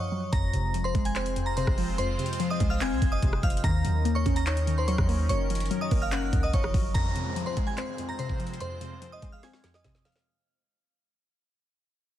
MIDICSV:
0, 0, Header, 1, 7, 480
1, 0, Start_track
1, 0, Tempo, 413793
1, 380, Time_signature, 4, 2, 24, 8
1, 14135, End_track
2, 0, Start_track
2, 0, Title_t, "Synth bell"
2, 0, Program_c, 0, 98
2, 0, Note_on_c, 0, 73, 64
2, 0, Note_on_c, 0, 85, 81
2, 353, Note_off_c, 0, 85, 0
2, 357, Note_off_c, 0, 73, 0
2, 377, Note_on_c, 0, 82, 101
2, 387, Note_on_c, 0, 94, 80
2, 943, Note_off_c, 0, 82, 0
2, 948, Note_off_c, 0, 94, 0
2, 977, Note_on_c, 0, 84, 81
2, 987, Note_on_c, 0, 72, 62
2, 1167, Note_off_c, 0, 84, 0
2, 1173, Note_off_c, 0, 72, 0
2, 1222, Note_on_c, 0, 80, 83
2, 1231, Note_on_c, 0, 92, 60
2, 1315, Note_off_c, 0, 80, 0
2, 1321, Note_off_c, 0, 92, 0
2, 1339, Note_on_c, 0, 84, 84
2, 1348, Note_on_c, 0, 72, 65
2, 1678, Note_off_c, 0, 84, 0
2, 1683, Note_off_c, 0, 72, 0
2, 1693, Note_on_c, 0, 82, 87
2, 1702, Note_on_c, 0, 94, 72
2, 1790, Note_off_c, 0, 82, 0
2, 1795, Note_off_c, 0, 94, 0
2, 1817, Note_on_c, 0, 84, 76
2, 1827, Note_on_c, 0, 72, 65
2, 2007, Note_off_c, 0, 84, 0
2, 2013, Note_off_c, 0, 72, 0
2, 2299, Note_on_c, 0, 84, 96
2, 2308, Note_on_c, 0, 72, 75
2, 2863, Note_off_c, 0, 84, 0
2, 2868, Note_off_c, 0, 72, 0
2, 2905, Note_on_c, 0, 87, 83
2, 2914, Note_on_c, 0, 75, 65
2, 3092, Note_off_c, 0, 87, 0
2, 3097, Note_off_c, 0, 75, 0
2, 3133, Note_on_c, 0, 89, 81
2, 3142, Note_on_c, 0, 77, 67
2, 3230, Note_off_c, 0, 89, 0
2, 3235, Note_off_c, 0, 77, 0
2, 3266, Note_on_c, 0, 92, 86
2, 3275, Note_on_c, 0, 80, 65
2, 3602, Note_off_c, 0, 92, 0
2, 3607, Note_off_c, 0, 80, 0
2, 3616, Note_on_c, 0, 87, 87
2, 3625, Note_on_c, 0, 75, 67
2, 3957, Note_off_c, 0, 87, 0
2, 3961, Note_off_c, 0, 75, 0
2, 3981, Note_on_c, 0, 89, 83
2, 3990, Note_on_c, 0, 77, 63
2, 4169, Note_off_c, 0, 89, 0
2, 4175, Note_off_c, 0, 77, 0
2, 4221, Note_on_c, 0, 82, 100
2, 4229, Note_on_c, 0, 94, 85
2, 4785, Note_off_c, 0, 82, 0
2, 4789, Note_off_c, 0, 94, 0
2, 4816, Note_on_c, 0, 85, 80
2, 4825, Note_on_c, 0, 73, 67
2, 5006, Note_off_c, 0, 85, 0
2, 5012, Note_off_c, 0, 73, 0
2, 5057, Note_on_c, 0, 82, 83
2, 5066, Note_on_c, 0, 94, 62
2, 5153, Note_off_c, 0, 82, 0
2, 5158, Note_off_c, 0, 94, 0
2, 5181, Note_on_c, 0, 85, 75
2, 5190, Note_on_c, 0, 73, 59
2, 5519, Note_off_c, 0, 85, 0
2, 5524, Note_off_c, 0, 73, 0
2, 5542, Note_on_c, 0, 84, 74
2, 5551, Note_on_c, 0, 72, 60
2, 5636, Note_off_c, 0, 84, 0
2, 5641, Note_off_c, 0, 72, 0
2, 5657, Note_on_c, 0, 85, 88
2, 5666, Note_on_c, 0, 73, 64
2, 5846, Note_off_c, 0, 85, 0
2, 5852, Note_off_c, 0, 73, 0
2, 6139, Note_on_c, 0, 85, 98
2, 6148, Note_on_c, 0, 73, 78
2, 6704, Note_off_c, 0, 85, 0
2, 6708, Note_off_c, 0, 73, 0
2, 6742, Note_on_c, 0, 87, 81
2, 6751, Note_on_c, 0, 75, 64
2, 6930, Note_off_c, 0, 87, 0
2, 6936, Note_off_c, 0, 75, 0
2, 6982, Note_on_c, 0, 89, 81
2, 6991, Note_on_c, 0, 77, 67
2, 7075, Note_off_c, 0, 89, 0
2, 7081, Note_off_c, 0, 77, 0
2, 7096, Note_on_c, 0, 90, 86
2, 7105, Note_on_c, 0, 78, 69
2, 7436, Note_off_c, 0, 90, 0
2, 7441, Note_off_c, 0, 78, 0
2, 7458, Note_on_c, 0, 87, 81
2, 7468, Note_on_c, 0, 75, 66
2, 7553, Note_off_c, 0, 87, 0
2, 7559, Note_off_c, 0, 75, 0
2, 7582, Note_on_c, 0, 85, 81
2, 7590, Note_on_c, 0, 73, 65
2, 8032, Note_off_c, 0, 85, 0
2, 8037, Note_off_c, 0, 73, 0
2, 8055, Note_on_c, 0, 82, 103
2, 8064, Note_on_c, 0, 94, 71
2, 8621, Note_off_c, 0, 82, 0
2, 8626, Note_off_c, 0, 94, 0
2, 8655, Note_on_c, 0, 84, 73
2, 8663, Note_on_c, 0, 72, 61
2, 8845, Note_off_c, 0, 84, 0
2, 8850, Note_off_c, 0, 72, 0
2, 8894, Note_on_c, 0, 80, 73
2, 8903, Note_on_c, 0, 92, 58
2, 8991, Note_off_c, 0, 80, 0
2, 8996, Note_off_c, 0, 92, 0
2, 9018, Note_on_c, 0, 84, 82
2, 9027, Note_on_c, 0, 72, 67
2, 9358, Note_off_c, 0, 84, 0
2, 9362, Note_off_c, 0, 72, 0
2, 9380, Note_on_c, 0, 82, 85
2, 9389, Note_on_c, 0, 94, 66
2, 9474, Note_off_c, 0, 82, 0
2, 9480, Note_off_c, 0, 94, 0
2, 9497, Note_on_c, 0, 84, 78
2, 9506, Note_on_c, 0, 72, 62
2, 9687, Note_off_c, 0, 84, 0
2, 9692, Note_off_c, 0, 72, 0
2, 9982, Note_on_c, 0, 84, 100
2, 9991, Note_on_c, 0, 72, 75
2, 10545, Note_off_c, 0, 84, 0
2, 10550, Note_off_c, 0, 72, 0
2, 10584, Note_on_c, 0, 87, 84
2, 10593, Note_on_c, 0, 75, 61
2, 10771, Note_off_c, 0, 87, 0
2, 10776, Note_off_c, 0, 75, 0
2, 10816, Note_on_c, 0, 89, 86
2, 10826, Note_on_c, 0, 77, 60
2, 10912, Note_off_c, 0, 89, 0
2, 10918, Note_off_c, 0, 77, 0
2, 10944, Note_on_c, 0, 92, 74
2, 10952, Note_on_c, 0, 80, 63
2, 11280, Note_off_c, 0, 92, 0
2, 11285, Note_off_c, 0, 80, 0
2, 11302, Note_on_c, 0, 87, 75
2, 11312, Note_on_c, 0, 75, 63
2, 11640, Note_off_c, 0, 87, 0
2, 11645, Note_off_c, 0, 75, 0
2, 11659, Note_on_c, 0, 89, 75
2, 11667, Note_on_c, 0, 77, 56
2, 11848, Note_off_c, 0, 89, 0
2, 11853, Note_off_c, 0, 77, 0
2, 14135, End_track
3, 0, Start_track
3, 0, Title_t, "Analog synth pad"
3, 0, Program_c, 1, 89
3, 380, Note_on_c, 1, 56, 81
3, 380, Note_on_c, 1, 65, 78
3, 380, Note_on_c, 1, 72, 91
3, 381, Note_on_c, 1, 60, 75
3, 4182, Note_off_c, 1, 56, 0
3, 4182, Note_off_c, 1, 60, 0
3, 4182, Note_off_c, 1, 65, 0
3, 4182, Note_off_c, 1, 72, 0
3, 4220, Note_on_c, 1, 51, 85
3, 4220, Note_on_c, 1, 61, 76
3, 4220, Note_on_c, 1, 63, 79
3, 4221, Note_on_c, 1, 70, 90
3, 6121, Note_off_c, 1, 63, 0
3, 6121, Note_off_c, 1, 70, 0
3, 6141, Note_on_c, 1, 70, 93
3, 8022, Note_off_c, 1, 51, 0
3, 8022, Note_off_c, 1, 61, 0
3, 8041, Note_off_c, 1, 70, 0
3, 8060, Note_on_c, 1, 65, 74
3, 8061, Note_on_c, 1, 56, 79
3, 8061, Note_on_c, 1, 60, 73
3, 8061, Note_on_c, 1, 72, 93
3, 11862, Note_off_c, 1, 56, 0
3, 11862, Note_off_c, 1, 60, 0
3, 11862, Note_off_c, 1, 65, 0
3, 11862, Note_off_c, 1, 72, 0
3, 14135, End_track
4, 0, Start_track
4, 0, Title_t, "Synth pluck"
4, 0, Program_c, 2, 84
4, 0, Note_on_c, 2, 42, 81
4, 0, Note_on_c, 2, 53, 89
4, 0, Note_on_c, 2, 54, 85
4, 0, Note_on_c, 2, 58, 102
4, 0, Note_on_c, 2, 61, 92
4, 124, Note_off_c, 2, 54, 0
4, 138, Note_on_c, 2, 54, 73
4, 379, Note_off_c, 2, 54, 0
4, 380, Note_off_c, 2, 61, 0
4, 380, Note_on_c, 2, 41, 95
4, 381, Note_off_c, 2, 42, 0
4, 381, Note_off_c, 2, 53, 0
4, 381, Note_off_c, 2, 58, 0
4, 622, Note_on_c, 2, 48, 78
4, 863, Note_on_c, 2, 53, 78
4, 1100, Note_on_c, 2, 56, 103
4, 1343, Note_on_c, 2, 60, 91
4, 1568, Note_off_c, 2, 41, 0
4, 1582, Note_on_c, 2, 41, 73
4, 1807, Note_off_c, 2, 48, 0
4, 1821, Note_on_c, 2, 48, 92
4, 2050, Note_off_c, 2, 53, 0
4, 2064, Note_on_c, 2, 53, 84
4, 2291, Note_off_c, 2, 41, 0
4, 2300, Note_off_c, 2, 56, 0
4, 2305, Note_on_c, 2, 41, 94
4, 2528, Note_off_c, 2, 48, 0
4, 2542, Note_off_c, 2, 60, 0
4, 2542, Note_on_c, 2, 48, 85
4, 2766, Note_off_c, 2, 53, 0
4, 2780, Note_on_c, 2, 53, 87
4, 3021, Note_on_c, 2, 56, 96
4, 3261, Note_on_c, 2, 60, 89
4, 3488, Note_off_c, 2, 41, 0
4, 3502, Note_on_c, 2, 41, 76
4, 3725, Note_off_c, 2, 48, 0
4, 3739, Note_on_c, 2, 48, 89
4, 3967, Note_off_c, 2, 53, 0
4, 3981, Note_on_c, 2, 53, 78
4, 4219, Note_on_c, 2, 51, 97
4, 4220, Note_off_c, 2, 48, 0
4, 4220, Note_off_c, 2, 56, 0
4, 4221, Note_off_c, 2, 41, 0
4, 4221, Note_off_c, 2, 53, 0
4, 4221, Note_off_c, 2, 60, 0
4, 4461, Note_on_c, 2, 54, 71
4, 4699, Note_on_c, 2, 58, 80
4, 4941, Note_on_c, 2, 61, 106
4, 5181, Note_on_c, 2, 63, 82
4, 5406, Note_off_c, 2, 51, 0
4, 5420, Note_on_c, 2, 51, 83
4, 5646, Note_off_c, 2, 54, 0
4, 5660, Note_on_c, 2, 54, 92
4, 5888, Note_off_c, 2, 58, 0
4, 5902, Note_on_c, 2, 58, 85
4, 6140, Note_off_c, 2, 51, 0
4, 6140, Note_off_c, 2, 54, 0
4, 6141, Note_off_c, 2, 58, 0
4, 6141, Note_off_c, 2, 61, 0
4, 6141, Note_off_c, 2, 63, 0
4, 6143, Note_on_c, 2, 42, 98
4, 6382, Note_on_c, 2, 53, 72
4, 6620, Note_on_c, 2, 54, 84
4, 6861, Note_on_c, 2, 58, 101
4, 7099, Note_on_c, 2, 61, 92
4, 7329, Note_off_c, 2, 42, 0
4, 7343, Note_on_c, 2, 42, 79
4, 7569, Note_off_c, 2, 53, 0
4, 7583, Note_on_c, 2, 53, 89
4, 7806, Note_off_c, 2, 54, 0
4, 7820, Note_on_c, 2, 54, 73
4, 8060, Note_off_c, 2, 54, 0
4, 8060, Note_off_c, 2, 61, 0
4, 8061, Note_off_c, 2, 58, 0
4, 8062, Note_off_c, 2, 42, 0
4, 8062, Note_off_c, 2, 53, 0
4, 8063, Note_on_c, 2, 41, 89
4, 8301, Note_on_c, 2, 48, 74
4, 8541, Note_on_c, 2, 53, 75
4, 8782, Note_on_c, 2, 56, 106
4, 9020, Note_on_c, 2, 60, 87
4, 9247, Note_off_c, 2, 41, 0
4, 9261, Note_on_c, 2, 41, 71
4, 9487, Note_off_c, 2, 48, 0
4, 9501, Note_on_c, 2, 48, 91
4, 9728, Note_off_c, 2, 53, 0
4, 9742, Note_on_c, 2, 53, 74
4, 9967, Note_off_c, 2, 41, 0
4, 9981, Note_off_c, 2, 56, 0
4, 9981, Note_on_c, 2, 41, 95
4, 10207, Note_off_c, 2, 48, 0
4, 10220, Note_off_c, 2, 60, 0
4, 10221, Note_on_c, 2, 48, 77
4, 10446, Note_off_c, 2, 53, 0
4, 10460, Note_on_c, 2, 53, 77
4, 10701, Note_on_c, 2, 56, 102
4, 10943, Note_on_c, 2, 60, 87
4, 11166, Note_off_c, 2, 41, 0
4, 11180, Note_on_c, 2, 41, 76
4, 11406, Note_off_c, 2, 48, 0
4, 11420, Note_on_c, 2, 48, 91
4, 11647, Note_off_c, 2, 53, 0
4, 11661, Note_on_c, 2, 53, 70
4, 11900, Note_off_c, 2, 41, 0
4, 11900, Note_off_c, 2, 48, 0
4, 11901, Note_off_c, 2, 53, 0
4, 11901, Note_off_c, 2, 56, 0
4, 11902, Note_off_c, 2, 60, 0
4, 14135, End_track
5, 0, Start_track
5, 0, Title_t, "808-style bass"
5, 0, Program_c, 3, 38
5, 380, Note_on_c, 3, 29, 115
5, 610, Note_off_c, 3, 29, 0
5, 620, Note_on_c, 3, 29, 111
5, 1081, Note_off_c, 3, 29, 0
5, 1100, Note_on_c, 3, 29, 105
5, 1906, Note_off_c, 3, 29, 0
5, 1941, Note_on_c, 3, 29, 102
5, 2517, Note_off_c, 3, 29, 0
5, 3020, Note_on_c, 3, 36, 108
5, 3261, Note_on_c, 3, 27, 104
5, 3278, Note_off_c, 3, 36, 0
5, 3381, Note_on_c, 3, 36, 105
5, 3398, Note_off_c, 3, 27, 0
5, 3495, Note_off_c, 3, 36, 0
5, 3502, Note_on_c, 3, 29, 107
5, 3731, Note_off_c, 3, 29, 0
5, 3741, Note_on_c, 3, 29, 106
5, 3971, Note_off_c, 3, 29, 0
5, 3981, Note_on_c, 3, 29, 102
5, 4211, Note_off_c, 3, 29, 0
5, 4220, Note_on_c, 3, 39, 115
5, 4451, Note_off_c, 3, 39, 0
5, 4460, Note_on_c, 3, 39, 107
5, 4921, Note_off_c, 3, 39, 0
5, 4940, Note_on_c, 3, 39, 104
5, 5746, Note_off_c, 3, 39, 0
5, 5781, Note_on_c, 3, 39, 107
5, 6126, Note_off_c, 3, 39, 0
5, 6140, Note_on_c, 3, 30, 111
5, 6601, Note_off_c, 3, 30, 0
5, 6860, Note_on_c, 3, 30, 104
5, 7321, Note_off_c, 3, 30, 0
5, 7342, Note_on_c, 3, 37, 104
5, 7571, Note_off_c, 3, 37, 0
5, 7581, Note_on_c, 3, 30, 106
5, 7811, Note_off_c, 3, 30, 0
5, 7820, Note_on_c, 3, 30, 104
5, 8051, Note_off_c, 3, 30, 0
5, 14135, End_track
6, 0, Start_track
6, 0, Title_t, "Downlifter"
6, 0, Program_c, 4, 103
6, 8061, Note_on_c, 4, 60, 83
6, 11901, Note_off_c, 4, 60, 0
6, 14135, End_track
7, 0, Start_track
7, 0, Title_t, "Drums"
7, 380, Note_on_c, 9, 36, 126
7, 380, Note_on_c, 9, 42, 93
7, 496, Note_off_c, 9, 36, 0
7, 496, Note_off_c, 9, 42, 0
7, 621, Note_on_c, 9, 42, 80
7, 737, Note_off_c, 9, 42, 0
7, 861, Note_on_c, 9, 42, 82
7, 977, Note_off_c, 9, 42, 0
7, 1100, Note_on_c, 9, 36, 97
7, 1100, Note_on_c, 9, 42, 47
7, 1216, Note_off_c, 9, 36, 0
7, 1216, Note_off_c, 9, 42, 0
7, 1220, Note_on_c, 9, 42, 81
7, 1336, Note_off_c, 9, 42, 0
7, 1340, Note_on_c, 9, 39, 117
7, 1340, Note_on_c, 9, 42, 45
7, 1456, Note_off_c, 9, 39, 0
7, 1456, Note_off_c, 9, 42, 0
7, 1460, Note_on_c, 9, 42, 75
7, 1576, Note_off_c, 9, 42, 0
7, 1580, Note_on_c, 9, 42, 81
7, 1696, Note_off_c, 9, 42, 0
7, 1819, Note_on_c, 9, 42, 77
7, 1935, Note_off_c, 9, 42, 0
7, 1940, Note_on_c, 9, 37, 97
7, 1941, Note_on_c, 9, 36, 100
7, 2056, Note_off_c, 9, 37, 0
7, 2057, Note_off_c, 9, 36, 0
7, 2061, Note_on_c, 9, 46, 60
7, 2177, Note_off_c, 9, 46, 0
7, 2301, Note_on_c, 9, 42, 92
7, 2417, Note_off_c, 9, 42, 0
7, 2541, Note_on_c, 9, 42, 47
7, 2621, Note_off_c, 9, 42, 0
7, 2621, Note_on_c, 9, 42, 62
7, 2701, Note_off_c, 9, 42, 0
7, 2701, Note_on_c, 9, 42, 79
7, 2781, Note_off_c, 9, 42, 0
7, 2781, Note_on_c, 9, 42, 78
7, 2897, Note_off_c, 9, 42, 0
7, 3019, Note_on_c, 9, 42, 81
7, 3021, Note_on_c, 9, 36, 95
7, 3135, Note_off_c, 9, 42, 0
7, 3137, Note_off_c, 9, 36, 0
7, 3260, Note_on_c, 9, 39, 113
7, 3260, Note_on_c, 9, 42, 74
7, 3376, Note_off_c, 9, 39, 0
7, 3376, Note_off_c, 9, 42, 0
7, 3502, Note_on_c, 9, 36, 108
7, 3502, Note_on_c, 9, 42, 89
7, 3618, Note_off_c, 9, 36, 0
7, 3618, Note_off_c, 9, 42, 0
7, 3740, Note_on_c, 9, 42, 77
7, 3742, Note_on_c, 9, 36, 103
7, 3856, Note_off_c, 9, 42, 0
7, 3858, Note_off_c, 9, 36, 0
7, 3861, Note_on_c, 9, 37, 96
7, 3977, Note_off_c, 9, 37, 0
7, 3980, Note_on_c, 9, 36, 102
7, 3981, Note_on_c, 9, 42, 48
7, 4061, Note_off_c, 9, 42, 0
7, 4061, Note_on_c, 9, 42, 64
7, 4096, Note_off_c, 9, 36, 0
7, 4141, Note_off_c, 9, 42, 0
7, 4141, Note_on_c, 9, 42, 85
7, 4220, Note_on_c, 9, 36, 126
7, 4221, Note_off_c, 9, 42, 0
7, 4221, Note_on_c, 9, 42, 95
7, 4336, Note_off_c, 9, 36, 0
7, 4337, Note_off_c, 9, 42, 0
7, 4461, Note_on_c, 9, 42, 81
7, 4577, Note_off_c, 9, 42, 0
7, 4701, Note_on_c, 9, 42, 86
7, 4817, Note_off_c, 9, 42, 0
7, 4940, Note_on_c, 9, 36, 95
7, 4940, Note_on_c, 9, 42, 48
7, 5056, Note_off_c, 9, 36, 0
7, 5056, Note_off_c, 9, 42, 0
7, 5060, Note_on_c, 9, 42, 83
7, 5176, Note_off_c, 9, 42, 0
7, 5180, Note_on_c, 9, 39, 116
7, 5180, Note_on_c, 9, 42, 46
7, 5296, Note_off_c, 9, 39, 0
7, 5296, Note_off_c, 9, 42, 0
7, 5301, Note_on_c, 9, 42, 77
7, 5417, Note_off_c, 9, 42, 0
7, 5421, Note_on_c, 9, 42, 80
7, 5537, Note_off_c, 9, 42, 0
7, 5659, Note_on_c, 9, 42, 79
7, 5775, Note_off_c, 9, 42, 0
7, 5780, Note_on_c, 9, 37, 97
7, 5781, Note_on_c, 9, 36, 98
7, 5896, Note_off_c, 9, 37, 0
7, 5897, Note_off_c, 9, 36, 0
7, 5902, Note_on_c, 9, 46, 63
7, 6018, Note_off_c, 9, 46, 0
7, 6141, Note_on_c, 9, 42, 97
7, 6257, Note_off_c, 9, 42, 0
7, 6381, Note_on_c, 9, 42, 76
7, 6440, Note_off_c, 9, 42, 0
7, 6440, Note_on_c, 9, 42, 66
7, 6501, Note_off_c, 9, 42, 0
7, 6501, Note_on_c, 9, 42, 57
7, 6560, Note_off_c, 9, 42, 0
7, 6560, Note_on_c, 9, 42, 45
7, 6622, Note_off_c, 9, 42, 0
7, 6622, Note_on_c, 9, 42, 78
7, 6738, Note_off_c, 9, 42, 0
7, 6859, Note_on_c, 9, 46, 59
7, 6860, Note_on_c, 9, 36, 95
7, 6975, Note_off_c, 9, 46, 0
7, 6976, Note_off_c, 9, 36, 0
7, 7100, Note_on_c, 9, 39, 116
7, 7100, Note_on_c, 9, 42, 72
7, 7216, Note_off_c, 9, 39, 0
7, 7216, Note_off_c, 9, 42, 0
7, 7341, Note_on_c, 9, 36, 105
7, 7341, Note_on_c, 9, 42, 84
7, 7457, Note_off_c, 9, 36, 0
7, 7457, Note_off_c, 9, 42, 0
7, 7580, Note_on_c, 9, 42, 81
7, 7582, Note_on_c, 9, 36, 97
7, 7696, Note_off_c, 9, 42, 0
7, 7698, Note_off_c, 9, 36, 0
7, 7701, Note_on_c, 9, 37, 99
7, 7817, Note_off_c, 9, 37, 0
7, 7820, Note_on_c, 9, 36, 105
7, 7822, Note_on_c, 9, 46, 62
7, 7936, Note_off_c, 9, 36, 0
7, 7938, Note_off_c, 9, 46, 0
7, 8061, Note_on_c, 9, 36, 127
7, 8061, Note_on_c, 9, 42, 91
7, 8177, Note_off_c, 9, 36, 0
7, 8177, Note_off_c, 9, 42, 0
7, 8301, Note_on_c, 9, 42, 82
7, 8417, Note_off_c, 9, 42, 0
7, 8541, Note_on_c, 9, 42, 80
7, 8657, Note_off_c, 9, 42, 0
7, 8779, Note_on_c, 9, 42, 78
7, 8780, Note_on_c, 9, 36, 91
7, 8895, Note_off_c, 9, 42, 0
7, 8896, Note_off_c, 9, 36, 0
7, 9020, Note_on_c, 9, 39, 109
7, 9020, Note_on_c, 9, 42, 73
7, 9136, Note_off_c, 9, 39, 0
7, 9136, Note_off_c, 9, 42, 0
7, 9261, Note_on_c, 9, 42, 77
7, 9377, Note_off_c, 9, 42, 0
7, 9500, Note_on_c, 9, 42, 80
7, 9616, Note_off_c, 9, 42, 0
7, 9621, Note_on_c, 9, 36, 96
7, 9737, Note_off_c, 9, 36, 0
7, 9741, Note_on_c, 9, 42, 64
7, 9820, Note_off_c, 9, 42, 0
7, 9820, Note_on_c, 9, 42, 65
7, 9900, Note_off_c, 9, 42, 0
7, 9900, Note_on_c, 9, 42, 66
7, 9980, Note_off_c, 9, 42, 0
7, 9980, Note_on_c, 9, 42, 90
7, 10096, Note_off_c, 9, 42, 0
7, 10221, Note_on_c, 9, 42, 77
7, 10337, Note_off_c, 9, 42, 0
7, 10461, Note_on_c, 9, 42, 78
7, 10577, Note_off_c, 9, 42, 0
7, 10699, Note_on_c, 9, 42, 79
7, 10701, Note_on_c, 9, 36, 91
7, 10815, Note_off_c, 9, 42, 0
7, 10817, Note_off_c, 9, 36, 0
7, 10940, Note_on_c, 9, 42, 76
7, 10941, Note_on_c, 9, 38, 57
7, 11056, Note_off_c, 9, 42, 0
7, 11057, Note_off_c, 9, 38, 0
7, 11061, Note_on_c, 9, 38, 52
7, 11177, Note_off_c, 9, 38, 0
7, 11180, Note_on_c, 9, 38, 69
7, 11181, Note_on_c, 9, 42, 76
7, 11296, Note_off_c, 9, 38, 0
7, 11297, Note_off_c, 9, 42, 0
7, 11300, Note_on_c, 9, 38, 64
7, 11416, Note_off_c, 9, 38, 0
7, 11419, Note_on_c, 9, 42, 79
7, 11420, Note_on_c, 9, 38, 85
7, 11421, Note_on_c, 9, 36, 93
7, 11535, Note_off_c, 9, 42, 0
7, 11536, Note_off_c, 9, 38, 0
7, 11537, Note_off_c, 9, 36, 0
7, 11540, Note_on_c, 9, 38, 77
7, 11656, Note_off_c, 9, 38, 0
7, 11660, Note_on_c, 9, 38, 95
7, 11660, Note_on_c, 9, 42, 63
7, 11740, Note_off_c, 9, 42, 0
7, 11740, Note_on_c, 9, 42, 62
7, 11776, Note_off_c, 9, 38, 0
7, 11780, Note_on_c, 9, 38, 93
7, 11820, Note_off_c, 9, 42, 0
7, 11820, Note_on_c, 9, 42, 66
7, 11896, Note_off_c, 9, 38, 0
7, 11936, Note_off_c, 9, 42, 0
7, 14135, End_track
0, 0, End_of_file